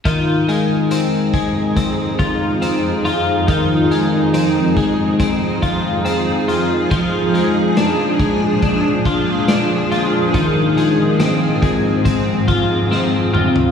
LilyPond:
<<
  \new Staff \with { instrumentName = "Clean electric guitar" } { \time 4/4 \key f \dorian \tempo 4 = 70 <ees f'>8 aes8 c'8 aes8 c'8 f'8 c'8 f'8 | <ees f'>8 aes8 c'8 aes8 c'8 f'8 c'8 f'8 | <f f'>8 aes8 d'8 aes8 d'8 f'8 d'8 f'8 | <ees f'>8 aes8 c'8 aes8 c'8 f'8 c'8 f'8 | }
  \new Staff \with { instrumentName = "Ambient pad" } { \clef bass \time 4/4 \key f \dorian << { <f aes'>1~ | <f aes'>1~ | <f aes'>1~ | <f aes'>1 | } \\ { <f, ees'>1~ | <f, ees'>1 | <bes, d'>1 | <aes, c'>1 | } >> }
  \new DrumStaff \with { instrumentName = "Drums" } \drummode { \time 4/4 <hh bd>8 hh8 hh8 <hh bd>8 <hh bd>8 <hh bd>8 hh8 hh8 | <hh bd>8 hh8 hh8 <hh bd>8 <hh bd>8 <hh bd>8 hh8 hh8 | <hh bd>8 hh8 <hh sn>8 <hh bd>8 <hh bd>8 <hh bd>8 <hh sn>8 hh8 | <hh bd>8 hh8 <hh sn>8 <hh bd>8 <hh bd>8 <hh bd>8 sn8 toml16 tomfh16 | }
>>